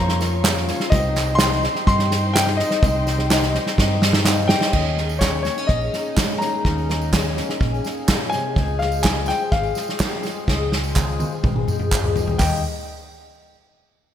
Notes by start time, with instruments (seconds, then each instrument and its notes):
Already playing: felt piano C#2 C#3 F3 A#3 C#4 A#4 C#5, fingered electric bass F2, string section C#3 A#4 F5 C#6, steel-string acoustic guitar F3 A#3, upright piano A#5
0.00 steel-string acoustic guitar C#4 F4
0.09 snare
0.20 steel-string acoustic guitar F3 A#3 C#4 F4, snare, tambourine
0.32 steel-string acoustic guitar A#3 C#4 F4
0.44 steel-string acoustic guitar C#3 F3 A#3 C#4 F4, felt piano F3 A#3 C#4 A#4 C#5, snare, clap, tambourine
0.57 snare
0.68 steel-string acoustic guitar F3 A#3 C#4 F4, snare, tambourine
0.80 snare
0.90 fingered electric bass C2, felt piano C2 C3 G3 C4 D#4 C5 D#5, steel-string acoustic guitar C3 D#3, string section D#4 C5 G5 C6, upright piano D#5, kick, snare, tambourine
0.94 steel-string acoustic guitar C4 D#4 G4
1.04 steel-string acoustic guitar C4 D#4 G4
1.16 steel-string acoustic guitar D#3 C4 D#4 G4, snare, clap, tambourine
1.29 steel-string acoustic guitar C4 D#4 G4
1.35 felt piano C4, upright piano C6, snare
1.39 steel-string acoustic guitar C3 D#3 C4 D#4 G4, felt piano G3 D#4 C5 D#5, clap, tambourine
1.52 snare
1.63 steel-string acoustic guitar D#3 C4 D#4 G4, snare, tambourine
1.75 steel-string acoustic guitar C4 D#4 G4, snare
1.86 fingered electric bass G2, steel-string acoustic guitar D#3 C4 D#4 G4, felt piano G3 C4 D#4 C5 D#5, upright piano C6, kick, snare
1.99 snare
2.11 steel-string acoustic guitar D#3 C4 D#4 G4, snare, tambourine
2.23 steel-string acoustic guitar C4 D#4 G4
2.33 steel-string acoustic guitar C3 D#3 C4 D#4 G4, felt piano G3 C4 D#4 C5 D#5, upright piano G5, snare, clap, tambourine
2.47 snare
2.57 steel-string acoustic guitar D#3 C4, upright piano D#5, snare, tambourine
2.61 steel-string acoustic guitar D#4 G4
2.71 snare
2.83 fingered electric bass C2, felt piano C2 C3 G3 C4 D#4 C5 D#5, steel-string acoustic guitar C3 D#3 C4 D#4 G4, kick, snare, tambourine
2.95 steel-string acoustic guitar C4 D#4 G4
3.07 steel-string acoustic guitar D#3 C4 D#4 G4, snare, tambourine
3.19 steel-string acoustic guitar C4 D#4 G4, snare
3.30 steel-string acoustic guitar C3 D#3 C4 D#4 G4, felt piano G3 C4 D#4 C5 D#5, snare, clap, tambourine
3.42 snare
3.54 steel-string acoustic guitar D#3 C4 D#4, snare, tambourine
3.58 steel-string acoustic guitar G4
3.66 steel-string acoustic guitar C4 D#4 G4, snare
3.78 fingered electric bass G2, steel-string acoustic guitar D#3 C4 D#4 G4, felt piano G3 C4 D#4 C5 D#5, kick, snare, tambourine
4.02 steel-string acoustic guitar D#3 C4 D#4 G4, snare, tambourine
4.13 steel-string acoustic guitar C4 D#4 G4, snare
4.25 steel-string acoustic guitar C3 D#3 C4 D#4 G4, felt piano G3 C4 D#4 C5 F5, snare, clap, tambourine
4.48 steel-string acoustic guitar D#3 C4, upright piano G5, snare, tambourine
4.52 steel-string acoustic guitar D#4 G4
4.61 snare
4.72 fingered electric bass D#2, steel-string acoustic guitar D#2 D#3 A#3 C#4, upright piano D#5, kick, snare, crash
4.76 steel-string acoustic guitar G#4
4.86 tambourine
4.97 steel-string acoustic guitar D#3 A#3 C#4 D#4 G#4, snare, tambourine
5.09 tambourine
5.19 steel-string acoustic guitar D#3 A#3, upright piano C#5, kick, snare, clap, tambourine
5.23 steel-string acoustic guitar C#4 G#4
5.33 tambourine
5.42 steel-string acoustic guitar A#3, upright piano C#5, snare, tambourine
5.58 steel-string acoustic guitar A#3 C#4 G#4, tambourine
5.67 fingered electric bass A#1, steel-string acoustic guitar A#2, upright piano D#5, kick, snare
5.80 steel-string acoustic guitar A#3 C#4 G#4, tambourine
5.92 steel-string acoustic guitar D#3 A#3 C#4 D#4 G#4, snare, tambourine
6.06 tambourine
6.17 steel-string acoustic guitar D#3 G#3 A#3 C#4 G#4, kick, snare, clap, tambourine
6.38 steel-string acoustic guitar D#3 A#3 C#4, upright piano A#5, snare, tambourine
6.43 steel-string acoustic guitar D#4 G#4
6.53 steel-string acoustic guitar A#3 C#4 G#4
6.65 fingered electric bass D#2, steel-string acoustic guitar D#2 D#3 A#3 C#4 G#4, kick, snare
6.78 tambourine
6.88 steel-string acoustic guitar D#3 A#3 C#4 D#4 G#4, snare, tambourine
7.02 tambourine
7.12 steel-string acoustic guitar D#3 A#3 C#4 G#4, kick, snare, clap, tambourine
7.26 tambourine
7.37 steel-string acoustic guitar C#4, snare, tambourine
7.49 steel-string acoustic guitar A#3 C#4 G#4, snare, tambourine
7.61 fingered electric bass A#1, steel-string acoustic guitar A#2, kick, snare
7.73 steel-string acoustic guitar A#3 C#4 G#4, tambourine
7.84 steel-string acoustic guitar D#3 A#3 C#4 D#4 G#4, snare, tambourine
7.97 tambourine
8.08 steel-string acoustic guitar A#2 D#3 A#3 C#4 G#4, kick, snare, clap, tambourine
8.30 steel-string acoustic guitar D#3, upright piano G#5, snare, tambourine
8.34 steel-string acoustic guitar C3 A#3 C#4 G#4
8.45 steel-string acoustic guitar A#3 C#4 G#4
8.56 fingered electric bass C#2, steel-string acoustic guitar C#3 F3 G#3 C4 G#4, kick, snare
8.68 tambourine
8.79 steel-string acoustic guitar F3 G#3, upright piano F5, snare, tambourine
8.83 steel-string acoustic guitar C4 G#4
8.92 tambourine
9.03 steel-string acoustic guitar C#3 F3 G#3 C4 G#4, upright piano G#5, kick, snare, clap, tambourine
9.15 tambourine
9.26 upright piano G5, snare, tambourine
9.40 steel-string acoustic guitar G#3 C4 G#4, tambourine
9.52 fingered electric bass G#1, upright piano F5, kick, snare
9.63 steel-string acoustic guitar G#3 C4 G#4, tambourine
9.75 steel-string acoustic guitar F3 G#3 C4, snare, tambourine
9.79 steel-string acoustic guitar G#4
9.88 snare, tambourine
9.99 steel-string acoustic guitar C#3 F3 G#3 C4 G#4, kick, snare, clap, tambourine
10.23 steel-string acoustic guitar F3 G#3 C4 G#4, snare, tambourine
10.36 steel-string acoustic guitar G#3 C4 G#4
10.47 fingered electric bass C#2, steel-string acoustic guitar C#3 F3 G#3 C4 G#4, kick, snare
10.71 steel-string acoustic guitar F3 G#3 C4 G#4, snare
10.84 tambourine
10.95 steel-string acoustic guitar C#3 F3 G#3 C4 G#4, kick, clap, high tom, tambourine
11.08 tambourine
11.20 high tom, tambourine
11.32 steel-string acoustic guitar G#3 C4 G#4, tambourine
11.43 fingered electric bass G#1, kick, mid tom, tambourine
11.56 steel-string acoustic guitar G#3 C4 G#4, mid tom
11.68 steel-string acoustic guitar F3 G#3 C4 G#4, mid tom, tambourine
11.79 mid tom, tambourine
11.92 steel-string acoustic guitar C#3 F3 G#3 C4 G#4, kick, clap, mid tom, tambourine
12.04 floor tom
12.16 steel-string acoustic guitar F3 G#3 C4, floor tom, tambourine
12.21 steel-string acoustic guitar G#4
12.28 steel-string acoustic guitar C4 G#4, floor tom, tambourine
12.32 steel-string acoustic guitar G#3
12.38 fingered electric bass D#2, steel-string acoustic guitar D#3, upright piano G5, kick, clap, floor tom, open hi-hat, tambourine
12.43 steel-string acoustic guitar A#3 D#4 G4